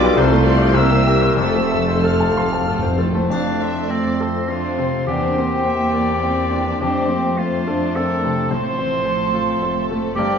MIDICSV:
0, 0, Header, 1, 14, 480
1, 0, Start_track
1, 0, Key_signature, -1, "major"
1, 0, Tempo, 578592
1, 631, Tempo, 634921
1, 1110, Time_signature, 3, 2, 24, 8
1, 2551, Tempo, 600601
1, 3511, Tempo, 574163
1, 6391, Tempo, 552486
1, 8510, End_track
2, 0, Start_track
2, 0, Title_t, "Violin section"
2, 0, Program_c, 0, 48
2, 0, Note_on_c, 0, 86, 98
2, 140, Note_on_c, 0, 84, 93
2, 144, Note_off_c, 0, 86, 0
2, 619, Note_on_c, 0, 88, 102
2, 628, Note_off_c, 0, 84, 0
2, 1098, Note_off_c, 0, 88, 0
2, 1107, Note_on_c, 0, 88, 86
2, 1594, Note_off_c, 0, 88, 0
2, 1605, Note_on_c, 0, 89, 71
2, 2317, Note_off_c, 0, 89, 0
2, 2546, Note_on_c, 0, 84, 49
2, 4439, Note_off_c, 0, 84, 0
2, 4488, Note_on_c, 0, 79, 49
2, 5432, Note_off_c, 0, 79, 0
2, 5459, Note_on_c, 0, 81, 44
2, 5915, Note_off_c, 0, 81, 0
2, 5925, Note_on_c, 0, 81, 48
2, 6388, Note_off_c, 0, 81, 0
2, 6397, Note_on_c, 0, 79, 54
2, 6880, Note_on_c, 0, 77, 45
2, 6883, Note_off_c, 0, 79, 0
2, 7348, Note_off_c, 0, 77, 0
2, 7358, Note_on_c, 0, 77, 50
2, 7590, Note_off_c, 0, 77, 0
2, 7595, Note_on_c, 0, 81, 53
2, 8313, Note_off_c, 0, 81, 0
2, 8314, Note_on_c, 0, 82, 49
2, 8510, Note_off_c, 0, 82, 0
2, 8510, End_track
3, 0, Start_track
3, 0, Title_t, "Flute section"
3, 0, Program_c, 1, 73
3, 0, Note_on_c, 1, 74, 97
3, 144, Note_off_c, 1, 74, 0
3, 156, Note_on_c, 1, 72, 88
3, 621, Note_on_c, 1, 76, 81
3, 635, Note_off_c, 1, 72, 0
3, 1097, Note_off_c, 1, 76, 0
3, 1106, Note_on_c, 1, 76, 83
3, 1593, Note_off_c, 1, 76, 0
3, 1604, Note_on_c, 1, 77, 64
3, 2316, Note_off_c, 1, 77, 0
3, 2565, Note_on_c, 1, 74, 71
3, 3014, Note_off_c, 1, 74, 0
3, 3061, Note_on_c, 1, 72, 52
3, 3515, Note_off_c, 1, 72, 0
3, 3521, Note_on_c, 1, 77, 60
3, 3999, Note_off_c, 1, 77, 0
3, 4007, Note_on_c, 1, 79, 69
3, 5439, Note_off_c, 1, 79, 0
3, 5449, Note_on_c, 1, 79, 74
3, 5908, Note_off_c, 1, 79, 0
3, 5917, Note_on_c, 1, 77, 61
3, 6392, Note_on_c, 1, 81, 66
3, 6393, Note_off_c, 1, 77, 0
3, 6880, Note_off_c, 1, 81, 0
3, 6893, Note_on_c, 1, 84, 80
3, 8044, Note_off_c, 1, 84, 0
3, 8314, Note_on_c, 1, 79, 73
3, 8510, Note_off_c, 1, 79, 0
3, 8510, End_track
4, 0, Start_track
4, 0, Title_t, "Oboe"
4, 0, Program_c, 2, 68
4, 0, Note_on_c, 2, 74, 98
4, 138, Note_off_c, 2, 74, 0
4, 144, Note_on_c, 2, 72, 89
4, 613, Note_on_c, 2, 76, 88
4, 625, Note_off_c, 2, 72, 0
4, 1088, Note_off_c, 2, 76, 0
4, 1093, Note_on_c, 2, 76, 79
4, 1593, Note_on_c, 2, 77, 65
4, 1604, Note_off_c, 2, 76, 0
4, 2311, Note_off_c, 2, 77, 0
4, 8510, End_track
5, 0, Start_track
5, 0, Title_t, "Violin section"
5, 0, Program_c, 3, 48
5, 25, Note_on_c, 3, 65, 61
5, 29, Note_on_c, 3, 71, 62
5, 140, Note_on_c, 3, 69, 62
5, 144, Note_off_c, 3, 65, 0
5, 146, Note_off_c, 3, 71, 0
5, 147, Note_on_c, 3, 60, 64
5, 252, Note_off_c, 3, 69, 0
5, 255, Note_on_c, 3, 65, 63
5, 256, Note_off_c, 3, 60, 0
5, 257, Note_on_c, 3, 72, 57
5, 368, Note_on_c, 3, 69, 58
5, 372, Note_on_c, 3, 60, 57
5, 380, Note_off_c, 3, 65, 0
5, 380, Note_off_c, 3, 72, 0
5, 498, Note_off_c, 3, 69, 0
5, 501, Note_off_c, 3, 60, 0
5, 506, Note_on_c, 3, 72, 53
5, 507, Note_on_c, 3, 65, 56
5, 623, Note_on_c, 3, 58, 61
5, 627, Note_on_c, 3, 70, 60
5, 631, Note_off_c, 3, 65, 0
5, 631, Note_off_c, 3, 72, 0
5, 735, Note_off_c, 3, 58, 0
5, 737, Note_off_c, 3, 70, 0
5, 741, Note_on_c, 3, 60, 57
5, 742, Note_on_c, 3, 72, 53
5, 861, Note_on_c, 3, 58, 53
5, 862, Note_off_c, 3, 60, 0
5, 863, Note_off_c, 3, 72, 0
5, 864, Note_on_c, 3, 70, 57
5, 984, Note_off_c, 3, 58, 0
5, 984, Note_on_c, 3, 60, 57
5, 985, Note_off_c, 3, 70, 0
5, 986, Note_on_c, 3, 72, 58
5, 1109, Note_off_c, 3, 60, 0
5, 1110, Note_off_c, 3, 72, 0
5, 1110, Note_on_c, 3, 69, 58
5, 1114, Note_on_c, 3, 57, 62
5, 1226, Note_off_c, 3, 69, 0
5, 1228, Note_off_c, 3, 57, 0
5, 1235, Note_on_c, 3, 72, 53
5, 1238, Note_on_c, 3, 60, 54
5, 1357, Note_on_c, 3, 69, 51
5, 1360, Note_off_c, 3, 72, 0
5, 1361, Note_off_c, 3, 60, 0
5, 1362, Note_on_c, 3, 57, 53
5, 1482, Note_off_c, 3, 69, 0
5, 1484, Note_off_c, 3, 57, 0
5, 1496, Note_on_c, 3, 60, 50
5, 1497, Note_on_c, 3, 72, 54
5, 1607, Note_on_c, 3, 57, 50
5, 1611, Note_off_c, 3, 60, 0
5, 1611, Note_on_c, 3, 69, 55
5, 1612, Note_off_c, 3, 72, 0
5, 1718, Note_off_c, 3, 57, 0
5, 1720, Note_off_c, 3, 69, 0
5, 1731, Note_on_c, 3, 60, 51
5, 1733, Note_on_c, 3, 72, 49
5, 1847, Note_off_c, 3, 60, 0
5, 1848, Note_off_c, 3, 72, 0
5, 1850, Note_on_c, 3, 57, 46
5, 1856, Note_on_c, 3, 69, 49
5, 1962, Note_on_c, 3, 60, 47
5, 1965, Note_off_c, 3, 57, 0
5, 1968, Note_off_c, 3, 69, 0
5, 1968, Note_on_c, 3, 72, 49
5, 2077, Note_on_c, 3, 57, 49
5, 2078, Note_on_c, 3, 69, 51
5, 2079, Note_off_c, 3, 60, 0
5, 2082, Note_off_c, 3, 72, 0
5, 2188, Note_off_c, 3, 57, 0
5, 2188, Note_off_c, 3, 69, 0
5, 2201, Note_on_c, 3, 72, 48
5, 2203, Note_on_c, 3, 60, 49
5, 2319, Note_off_c, 3, 72, 0
5, 2320, Note_off_c, 3, 60, 0
5, 2325, Note_on_c, 3, 57, 48
5, 2327, Note_on_c, 3, 69, 46
5, 2440, Note_off_c, 3, 57, 0
5, 2441, Note_off_c, 3, 69, 0
5, 2446, Note_on_c, 3, 72, 51
5, 2450, Note_on_c, 3, 60, 52
5, 2557, Note_on_c, 3, 77, 53
5, 2558, Note_off_c, 3, 72, 0
5, 2560, Note_off_c, 3, 60, 0
5, 2781, Note_off_c, 3, 77, 0
5, 2798, Note_on_c, 3, 76, 54
5, 3030, Note_on_c, 3, 74, 52
5, 3040, Note_off_c, 3, 76, 0
5, 3262, Note_on_c, 3, 72, 45
5, 3274, Note_off_c, 3, 74, 0
5, 3986, Note_off_c, 3, 72, 0
5, 3995, Note_on_c, 3, 72, 50
5, 4467, Note_off_c, 3, 72, 0
5, 4488, Note_on_c, 3, 76, 50
5, 4713, Note_on_c, 3, 74, 43
5, 4722, Note_off_c, 3, 76, 0
5, 5445, Note_off_c, 3, 74, 0
5, 5446, Note_on_c, 3, 72, 49
5, 5906, Note_off_c, 3, 72, 0
5, 5915, Note_on_c, 3, 72, 48
5, 6383, Note_off_c, 3, 72, 0
5, 6400, Note_on_c, 3, 70, 55
5, 6643, Note_off_c, 3, 70, 0
5, 6647, Note_on_c, 3, 69, 55
5, 8316, Note_off_c, 3, 69, 0
5, 8319, Note_on_c, 3, 74, 55
5, 8510, Note_off_c, 3, 74, 0
5, 8510, End_track
6, 0, Start_track
6, 0, Title_t, "Clarinet"
6, 0, Program_c, 4, 71
6, 2545, Note_on_c, 4, 62, 75
6, 3031, Note_on_c, 4, 60, 58
6, 3043, Note_off_c, 4, 62, 0
6, 3505, Note_on_c, 4, 65, 69
6, 3517, Note_off_c, 4, 60, 0
6, 3983, Note_off_c, 4, 65, 0
6, 3988, Note_on_c, 4, 67, 81
6, 5414, Note_off_c, 4, 67, 0
6, 5446, Note_on_c, 4, 67, 73
6, 5914, Note_on_c, 4, 65, 60
6, 5926, Note_off_c, 4, 67, 0
6, 6402, Note_on_c, 4, 69, 70
6, 6415, Note_off_c, 4, 65, 0
6, 6875, Note_off_c, 4, 69, 0
6, 6881, Note_on_c, 4, 72, 89
6, 8057, Note_off_c, 4, 72, 0
6, 8313, Note_on_c, 4, 67, 78
6, 8510, Note_off_c, 4, 67, 0
6, 8510, End_track
7, 0, Start_track
7, 0, Title_t, "Grand piano"
7, 0, Program_c, 5, 0
7, 0, Control_c, 5, 64, 127
7, 0, Note_on_c, 5, 35, 93
7, 0, Note_on_c, 5, 55, 71
7, 0, Note_on_c, 5, 65, 78
7, 27, Note_on_c, 5, 67, 70
7, 98, Note_off_c, 5, 65, 0
7, 135, Note_off_c, 5, 35, 0
7, 139, Note_on_c, 5, 36, 86
7, 145, Note_off_c, 5, 67, 0
7, 163, Control_c, 5, 64, 0
7, 165, Note_off_c, 5, 55, 0
7, 263, Note_on_c, 5, 57, 67
7, 311, Control_c, 5, 64, 127
7, 375, Note_on_c, 5, 65, 66
7, 457, Note_off_c, 5, 57, 0
7, 498, Note_on_c, 5, 72, 58
7, 576, Note_off_c, 5, 65, 0
7, 602, Note_off_c, 5, 36, 0
7, 614, Note_on_c, 5, 36, 82
7, 627, Note_off_c, 5, 72, 0
7, 645, Control_c, 5, 64, 0
7, 748, Note_on_c, 5, 58, 59
7, 797, Control_c, 5, 64, 127
7, 861, Note_on_c, 5, 67, 64
7, 938, Note_off_c, 5, 58, 0
7, 979, Note_on_c, 5, 72, 59
7, 1058, Note_off_c, 5, 67, 0
7, 1087, Note_off_c, 5, 36, 0
7, 1092, Note_on_c, 5, 41, 72
7, 1106, Note_off_c, 5, 72, 0
7, 1128, Control_c, 5, 64, 0
7, 1226, Note_on_c, 5, 57, 59
7, 1241, Control_c, 5, 64, 127
7, 1350, Note_on_c, 5, 69, 61
7, 1429, Note_off_c, 5, 57, 0
7, 1478, Note_on_c, 5, 72, 59
7, 1552, Note_off_c, 5, 69, 0
7, 1594, Note_on_c, 5, 69, 60
7, 1675, Note_off_c, 5, 72, 0
7, 1723, Note_on_c, 5, 81, 61
7, 1791, Note_off_c, 5, 69, 0
7, 1851, Note_on_c, 5, 84, 60
7, 1913, Note_off_c, 5, 81, 0
7, 1966, Note_on_c, 5, 81, 53
7, 2035, Note_off_c, 5, 84, 0
7, 2082, Note_on_c, 5, 69, 57
7, 2152, Note_off_c, 5, 81, 0
7, 2193, Note_on_c, 5, 72, 57
7, 2270, Note_off_c, 5, 69, 0
7, 2312, Note_on_c, 5, 69, 55
7, 2387, Note_off_c, 5, 72, 0
7, 2435, Note_on_c, 5, 57, 52
7, 2504, Note_off_c, 5, 69, 0
7, 2513, Note_off_c, 5, 41, 0
7, 2551, Note_off_c, 5, 57, 0
7, 2552, Note_on_c, 5, 41, 55
7, 2569, Control_c, 5, 64, 0
7, 2697, Control_c, 5, 64, 127
7, 2801, Note_on_c, 5, 60, 49
7, 3025, Note_on_c, 5, 72, 45
7, 3185, Note_off_c, 5, 60, 0
7, 3273, Note_on_c, 5, 69, 48
7, 3412, Note_off_c, 5, 72, 0
7, 3499, Note_on_c, 5, 60, 44
7, 3655, Note_off_c, 5, 69, 0
7, 3746, Note_on_c, 5, 48, 41
7, 3891, Note_off_c, 5, 60, 0
7, 3961, Note_off_c, 5, 41, 0
7, 3991, Note_off_c, 5, 48, 0
7, 3991, Note_on_c, 5, 40, 57
7, 4010, Control_c, 5, 64, 0
7, 4145, Control_c, 5, 64, 127
7, 4245, Note_on_c, 5, 60, 48
7, 4471, Note_on_c, 5, 72, 48
7, 4624, Note_off_c, 5, 60, 0
7, 4709, Note_on_c, 5, 70, 50
7, 4860, Note_off_c, 5, 72, 0
7, 4950, Note_on_c, 5, 60, 45
7, 5105, Note_off_c, 5, 70, 0
7, 5207, Note_on_c, 5, 52, 45
7, 5345, Note_off_c, 5, 60, 0
7, 5411, Note_off_c, 5, 40, 0
7, 5441, Note_on_c, 5, 41, 57
7, 5447, Note_off_c, 5, 52, 0
7, 5460, Control_c, 5, 64, 0
7, 5600, Control_c, 5, 64, 127
7, 5671, Note_on_c, 5, 60, 48
7, 5912, Note_on_c, 5, 72, 51
7, 6053, Note_off_c, 5, 60, 0
7, 6163, Note_on_c, 5, 69, 46
7, 6295, Note_off_c, 5, 72, 0
7, 6395, Note_on_c, 5, 60, 45
7, 6546, Note_off_c, 5, 69, 0
7, 6653, Note_on_c, 5, 48, 44
7, 6786, Note_off_c, 5, 60, 0
7, 6844, Note_off_c, 5, 41, 0
7, 6876, Note_on_c, 5, 45, 57
7, 6888, Note_off_c, 5, 48, 0
7, 6895, Control_c, 5, 64, 0
7, 7024, Control_c, 5, 64, 127
7, 7116, Note_on_c, 5, 60, 47
7, 7352, Note_on_c, 5, 72, 51
7, 7498, Note_off_c, 5, 60, 0
7, 7602, Note_on_c, 5, 65, 54
7, 7734, Note_off_c, 5, 72, 0
7, 7844, Note_on_c, 5, 60, 49
7, 7979, Note_off_c, 5, 65, 0
7, 8093, Note_on_c, 5, 57, 48
7, 8222, Note_off_c, 5, 60, 0
7, 8275, Note_off_c, 5, 45, 0
7, 8323, Note_off_c, 5, 57, 0
7, 8329, Control_c, 5, 64, 0
7, 8337, Note_on_c, 5, 43, 64
7, 8462, Control_c, 5, 64, 127
7, 8510, Note_off_c, 5, 43, 0
7, 8510, End_track
8, 0, Start_track
8, 0, Title_t, "Viola section"
8, 0, Program_c, 6, 48
8, 0, Note_on_c, 6, 71, 90
8, 127, Note_on_c, 6, 69, 81
8, 131, Note_off_c, 6, 71, 0
8, 369, Note_off_c, 6, 69, 0
8, 371, Note_on_c, 6, 74, 77
8, 625, Note_off_c, 6, 74, 0
8, 627, Note_on_c, 6, 72, 66
8, 856, Note_on_c, 6, 70, 68
8, 864, Note_off_c, 6, 72, 0
8, 1105, Note_off_c, 6, 70, 0
8, 1107, Note_on_c, 6, 69, 78
8, 2316, Note_off_c, 6, 69, 0
8, 2552, Note_on_c, 6, 57, 53
8, 3480, Note_off_c, 6, 57, 0
8, 3510, Note_on_c, 6, 62, 54
8, 3747, Note_off_c, 6, 62, 0
8, 3760, Note_on_c, 6, 60, 51
8, 3993, Note_off_c, 6, 60, 0
8, 4003, Note_on_c, 6, 60, 51
8, 4237, Note_off_c, 6, 60, 0
8, 4242, Note_on_c, 6, 58, 46
8, 4479, Note_off_c, 6, 58, 0
8, 4491, Note_on_c, 6, 58, 51
8, 4958, Note_off_c, 6, 58, 0
8, 4963, Note_on_c, 6, 60, 58
8, 5207, Note_off_c, 6, 60, 0
8, 5207, Note_on_c, 6, 62, 49
8, 5447, Note_off_c, 6, 62, 0
8, 5457, Note_on_c, 6, 60, 52
8, 5673, Note_on_c, 6, 58, 44
8, 5687, Note_off_c, 6, 60, 0
8, 5912, Note_off_c, 6, 58, 0
8, 5915, Note_on_c, 6, 57, 55
8, 6148, Note_off_c, 6, 57, 0
8, 6158, Note_on_c, 6, 62, 52
8, 6883, Note_off_c, 6, 62, 0
8, 6885, Note_on_c, 6, 60, 54
8, 7114, Note_off_c, 6, 60, 0
8, 7124, Note_on_c, 6, 60, 48
8, 7820, Note_off_c, 6, 60, 0
8, 7846, Note_on_c, 6, 57, 55
8, 8064, Note_off_c, 6, 57, 0
8, 8075, Note_on_c, 6, 57, 56
8, 8309, Note_off_c, 6, 57, 0
8, 8315, Note_on_c, 6, 58, 53
8, 8510, Note_off_c, 6, 58, 0
8, 8510, End_track
9, 0, Start_track
9, 0, Title_t, "French horn section"
9, 0, Program_c, 7, 60
9, 0, Note_on_c, 7, 55, 87
9, 0, Note_on_c, 7, 65, 80
9, 115, Note_off_c, 7, 55, 0
9, 128, Note_on_c, 7, 57, 78
9, 617, Note_on_c, 7, 67, 67
9, 620, Note_on_c, 7, 58, 65
9, 622, Note_off_c, 7, 57, 0
9, 631, Note_off_c, 7, 65, 0
9, 1103, Note_off_c, 7, 67, 0
9, 1104, Note_off_c, 7, 58, 0
9, 1106, Note_on_c, 7, 57, 67
9, 1108, Note_on_c, 7, 72, 67
9, 2292, Note_off_c, 7, 72, 0
9, 2315, Note_off_c, 7, 57, 0
9, 2543, Note_on_c, 7, 72, 51
9, 2544, Note_on_c, 7, 57, 51
9, 3957, Note_off_c, 7, 57, 0
9, 4002, Note_on_c, 7, 58, 48
9, 5408, Note_off_c, 7, 72, 0
9, 5421, Note_off_c, 7, 58, 0
9, 5462, Note_on_c, 7, 72, 52
9, 5464, Note_on_c, 7, 57, 55
9, 6890, Note_off_c, 7, 57, 0
9, 6892, Note_on_c, 7, 53, 52
9, 8286, Note_off_c, 7, 72, 0
9, 8289, Note_off_c, 7, 53, 0
9, 8305, Note_on_c, 7, 55, 58
9, 8310, Note_on_c, 7, 72, 57
9, 8510, Note_off_c, 7, 55, 0
9, 8510, Note_off_c, 7, 72, 0
9, 8510, End_track
10, 0, Start_track
10, 0, Title_t, "Cello section"
10, 0, Program_c, 8, 48
10, 0, Note_on_c, 8, 47, 88
10, 135, Note_off_c, 8, 47, 0
10, 143, Note_on_c, 8, 48, 82
10, 1090, Note_off_c, 8, 48, 0
10, 1109, Note_on_c, 8, 41, 66
10, 2366, Note_off_c, 8, 41, 0
10, 3037, Note_on_c, 8, 57, 51
10, 3479, Note_off_c, 8, 57, 0
10, 3512, Note_on_c, 8, 60, 58
10, 3985, Note_off_c, 8, 60, 0
10, 4002, Note_on_c, 8, 62, 62
10, 4240, Note_off_c, 8, 62, 0
10, 4243, Note_on_c, 8, 60, 56
10, 4479, Note_off_c, 8, 60, 0
10, 4485, Note_on_c, 8, 58, 53
10, 4965, Note_off_c, 8, 58, 0
10, 4965, Note_on_c, 8, 60, 55
10, 5448, Note_off_c, 8, 60, 0
10, 5452, Note_on_c, 8, 62, 59
10, 5680, Note_off_c, 8, 62, 0
10, 5683, Note_on_c, 8, 60, 60
10, 5917, Note_off_c, 8, 60, 0
10, 5921, Note_on_c, 8, 57, 53
10, 6157, Note_off_c, 8, 57, 0
10, 6157, Note_on_c, 8, 62, 54
10, 6390, Note_off_c, 8, 62, 0
10, 6398, Note_on_c, 8, 60, 52
10, 6642, Note_off_c, 8, 60, 0
10, 6643, Note_on_c, 8, 57, 57
10, 6883, Note_off_c, 8, 57, 0
10, 6895, Note_on_c, 8, 53, 52
10, 7118, Note_on_c, 8, 52, 52
10, 7127, Note_off_c, 8, 53, 0
10, 7357, Note_off_c, 8, 52, 0
10, 7359, Note_on_c, 8, 53, 51
10, 7595, Note_off_c, 8, 53, 0
10, 7596, Note_on_c, 8, 57, 59
10, 8510, Note_off_c, 8, 57, 0
10, 8510, End_track
11, 0, Start_track
11, 0, Title_t, "Timpani"
11, 0, Program_c, 10, 47
11, 1109, Note_on_c, 10, 41, 35
11, 1168, Note_off_c, 10, 41, 0
11, 1177, Note_on_c, 10, 41, 35
11, 1233, Note_off_c, 10, 41, 0
11, 1370, Note_on_c, 10, 41, 40
11, 1423, Note_off_c, 10, 41, 0
11, 1432, Note_on_c, 10, 41, 40
11, 1483, Note_off_c, 10, 41, 0
11, 1492, Note_on_c, 10, 41, 43
11, 1549, Note_off_c, 10, 41, 0
11, 1558, Note_on_c, 10, 41, 46
11, 1611, Note_off_c, 10, 41, 0
11, 1621, Note_on_c, 10, 41, 49
11, 1671, Note_off_c, 10, 41, 0
11, 1681, Note_on_c, 10, 41, 53
11, 1738, Note_off_c, 10, 41, 0
11, 1746, Note_on_c, 10, 41, 54
11, 1798, Note_off_c, 10, 41, 0
11, 1807, Note_on_c, 10, 41, 57
11, 1860, Note_off_c, 10, 41, 0
11, 1869, Note_on_c, 10, 41, 58
11, 1912, Note_off_c, 10, 41, 0
11, 1921, Note_on_c, 10, 41, 58
11, 1975, Note_off_c, 10, 41, 0
11, 1984, Note_on_c, 10, 41, 63
11, 2037, Note_off_c, 10, 41, 0
11, 2046, Note_on_c, 10, 41, 65
11, 2095, Note_off_c, 10, 41, 0
11, 2104, Note_on_c, 10, 41, 72
11, 2152, Note_off_c, 10, 41, 0
11, 2161, Note_on_c, 10, 41, 79
11, 2211, Note_off_c, 10, 41, 0
11, 2220, Note_on_c, 10, 41, 83
11, 2279, Note_off_c, 10, 41, 0
11, 2288, Note_on_c, 10, 41, 79
11, 2337, Note_off_c, 10, 41, 0
11, 2346, Note_on_c, 10, 41, 87
11, 2401, Note_off_c, 10, 41, 0
11, 2411, Note_on_c, 10, 41, 89
11, 2462, Note_off_c, 10, 41, 0
11, 2471, Note_on_c, 10, 41, 94
11, 2528, Note_off_c, 10, 41, 0
11, 8510, End_track
12, 0, Start_track
12, 0, Title_t, "Double bass section"
12, 0, Program_c, 11, 48
12, 0, Note_on_c, 11, 35, 75
12, 136, Note_off_c, 11, 35, 0
12, 141, Note_on_c, 11, 36, 74
12, 1089, Note_off_c, 11, 36, 0
12, 1110, Note_on_c, 11, 29, 69
12, 2366, Note_off_c, 11, 29, 0
12, 2559, Note_on_c, 11, 41, 51
12, 3965, Note_off_c, 11, 41, 0
12, 4002, Note_on_c, 11, 40, 55
12, 5421, Note_off_c, 11, 40, 0
12, 5450, Note_on_c, 11, 41, 55
12, 6883, Note_off_c, 11, 41, 0
12, 6884, Note_on_c, 11, 33, 57
12, 7834, Note_off_c, 11, 33, 0
12, 7841, Note_on_c, 11, 29, 52
12, 8307, Note_off_c, 11, 29, 0
12, 8319, Note_on_c, 11, 31, 60
12, 8510, Note_off_c, 11, 31, 0
12, 8510, End_track
13, 0, Start_track
13, 0, Title_t, "Tuba"
13, 0, Program_c, 12, 58
13, 0, Note_on_c, 12, 35, 82
13, 137, Note_off_c, 12, 35, 0
13, 146, Note_on_c, 12, 36, 80
13, 1091, Note_off_c, 12, 36, 0
13, 1108, Note_on_c, 12, 29, 70
13, 2365, Note_off_c, 12, 29, 0
13, 8510, End_track
14, 0, Start_track
14, 0, Title_t, "Drums"
14, 2563, Note_on_c, 9, 81, 36
14, 2643, Note_off_c, 9, 81, 0
14, 8510, End_track
0, 0, End_of_file